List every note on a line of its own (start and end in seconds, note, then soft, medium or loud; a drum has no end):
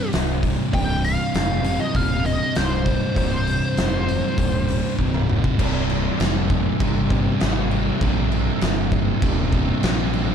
0.00 0.11 C2 medium
0.00 0.12 G2 medium
0.00 0.15 C3 medium
0.12 0.55 C1 medium
0.12 0.72 C2 medium
0.12 0.72 G2 medium
0.12 0.76 C3 medium
0.12 snare loud
0.12 open hi-hat medium
0.43 kick medium
0.43 open hi-hat medium
0.73 1.16 C1 medium
0.73 1.67 C2 loud
0.73 1.63 G2 loud
0.73 1.63 C3 loud
0.73 1.05 G5 loud
0.73 kick loud
0.73 open hi-hat medium
1.04 1.80 F5 medium
1.04 open hi-hat medium
1.34 1.76 F1 medium
1.34 snare loud
1.34 open hi-hat medium
1.63 2.54 C2 medium
1.63 2.54 G2 medium
1.63 2.57 C3 medium
1.63 open hi-hat medium
1.81 1.96 D#5 medium
1.95 2.37 D#1 medium
1.95 2.26 F5 loud
1.95 kick medium
1.95 open hi-hat medium
2.25 2.57 D#5 medium
2.25 open hi-hat medium
2.54 2.98 C1 medium
2.54 3.14 C2 medium
2.54 3.15 G2 medium
2.54 3.18 C3 medium
2.54 3.16 C5 medium
2.54 snare loud
2.54 open hi-hat medium
2.86 kick medium
2.86 open hi-hat medium
3.15 3.59 C1 loud
3.15 4.05 C2 medium
3.15 4.06 G2 medium
3.15 4.05 C3 loud
3.15 4.95 C5 medium
3.15 kick loud
3.15 open hi-hat medium
3.47 open hi-hat medium
3.77 4.19 F1 medium
3.77 snare loud
3.77 open hi-hat medium
4.06 4.96 C2 medium
4.06 4.97 G2 medium
4.06 4.96 C3 medium
4.06 open hi-hat medium
4.38 4.80 D#1 medium
4.38 kick medium
4.38 open hi-hat medium
4.69 open hi-hat medium
4.97 5.41 C1 medium
4.97 5.57 C2 medium
4.97 5.58 G2 medium
4.97 kick medium
5.01 5.59 C3 medium
5.14 mid tom medium
5.30 mid tom medium
5.44 kick medium
5.58 6.08 C1 loud
5.58 7.13 C2 loud
5.58 7.09 G2 medium
5.58 7.09 C3 loud
5.58 kick loud
5.58 crash loud
5.58 crash medium
5.90 crash medium
6.20 6.68 F1 medium
6.20 snare loud
6.20 crash medium
6.50 kick medium
6.50 crash medium
6.80 7.28 G1 loud
6.80 8.00 C2 medium
6.80 8.00 G2 medium
6.80 8.03 C3 medium
6.80 kick loud
6.80 crash medium
7.10 7.39 C2 medium
7.10 7.40 G2 medium
7.10 7.43 C3 medium
7.10 kick loud
7.10 crash medium
7.40 7.89 G#1 medium
7.40 7.99 C2 medium
7.40 8.00 G2 medium
7.40 8.03 C3 medium
7.40 snare loud
7.40 crash medium
7.71 crash medium
7.99 8.49 A#1 loud
7.99 9.55 C2 medium
7.99 9.51 G2 loud
7.99 9.51 C3 loud
7.99 kick loud
7.99 crash medium
8.32 crash medium
8.61 9.10 G1 medium
8.61 snare loud
8.61 crash medium
8.92 kick medium
8.92 crash medium
9.21 9.71 D#1 loud
9.21 10.35 C2 medium
9.21 10.35 G2 medium
9.21 10.35 C3 medium
9.21 kick loud
9.21 crash medium
9.52 9.82 G2 medium
9.52 9.86 C3 medium
9.52 kick medium
9.52 crash medium
9.56 9.82 C2 medium
9.82 10.31 A#1 medium
9.82 10.35 C2 medium
9.82 10.35 G2 medium
9.82 10.35 C3 medium
9.82 snare loud
9.82 crash medium
10.13 crash medium